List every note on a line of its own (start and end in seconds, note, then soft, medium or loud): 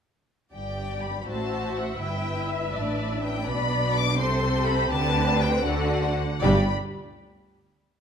0.53 1.23 G1 soft
0.53 1.23 G2 soft
0.53 1.23 G4 soft
0.53 1.23 D5 soft
0.53 0.99 G5 medium
1.02 1.18 B5 medium
1.20 1.27 B5 soft
1.27 2.00 A1 soft
1.27 2.00 A2 soft
1.27 2.01 F#4 soft
1.27 2.01 C5 soft
1.27 3.42 E5 soft
1.27 1.76 A5 medium
1.76 2.01 F#5 medium
2.00 2.72 G1 soft
2.00 2.72 G2 soft
2.00 2.72 E4 soft
2.00 4.14 B4 medium
2.00 2.48 G5 medium
2.49 2.74 E5 medium
2.73 3.46 A1 soft
2.73 3.46 A2 soft
2.73 3.44 D4 medium
2.73 3.22 D5 medium
3.22 3.45 G5 medium
3.45 4.18 B1 medium
3.45 4.18 B2 medium
3.45 4.17 D4 medium
3.45 4.18 D5 medium
3.45 3.93 B5 medium
3.93 4.18 D6 loud
4.17 4.91 C2 medium
4.17 4.91 C3 medium
4.17 4.89 C4 medium
4.17 4.91 A4 medium
4.17 4.90 C5 medium
4.17 4.65 C6 medium
4.64 4.90 B5 medium
4.90 5.63 D2 medium
4.90 5.64 D3 medium
4.90 5.64 C4 medium
4.90 5.64 G4 medium
4.90 5.66 B4 medium
4.90 5.39 A5 loud
5.39 5.65 G5 loud
5.64 6.20 D2 medium
5.64 6.21 D3 medium
5.64 6.22 D4 medium
5.64 6.22 F#4 medium
5.64 6.03 A4 medium
5.64 6.42 F#5 medium
6.41 6.71 G1 medium
6.41 6.72 G2 medium
6.41 6.71 G3 medium
6.41 6.71 D4 medium
6.41 6.70 G4 medium
6.41 6.70 D5 medium
6.41 6.70 B5 medium